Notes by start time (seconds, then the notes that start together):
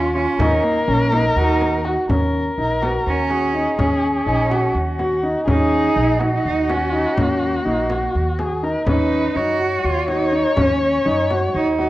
Already playing: D#2 C#4 F4
0.14 C#4 F4
0.39 D#2 D#4 A#4, frame drum
0.63 A#3
0.88 A#1 C#4
1.12 A#3 D#4, frame drum
1.36 D#2 D#4 F#4
1.61 frame drum
1.85 F#4
2.09 D#2 C#4 A#4, frame drum
2.58 A#1 D#4
2.82 B3 F#4, frame drum
3.07 D#2 C#4
3.30 F#4 G#4, frame drum
3.54 D#4
3.78 D#2 C#4, frame drum
4.26 A#1 D#4
4.50 F#4, frame drum
4.75 D#2 F#4
4.99 F#4, frame drum
5.23 D#4
5.46 D#2 C#4 D#4 G#4, frame drum
5.95 A#1 D#4
6.19 F#4, frame drum
6.45 D#2 D#4
6.69 C#4 F#4, frame drum
6.92 D#4
7.17 D#2 A#3 C#4, frame drum
7.42 frame drum
7.65 A#1 A#3 D#4, frame drum
7.90 F#4, frame drum
8.15 D#2
8.39 F#4 G#4, frame drum
8.63 D#4 A#4
8.87 D#2 C#4 D#4 B4, frame drum
9.35 F#2 D#4 F#4 C#5
9.59 F#4
9.85 D#2 F4
10.08 D#4 F#4, frame drum
10.32 D#4
10.56 D#2 C#4, frame drum
10.83 C#4
11.05 F#2 D#4
11.30 F#4, frame drum
11.54 D#2 D#4
11.78 F#4, frame drum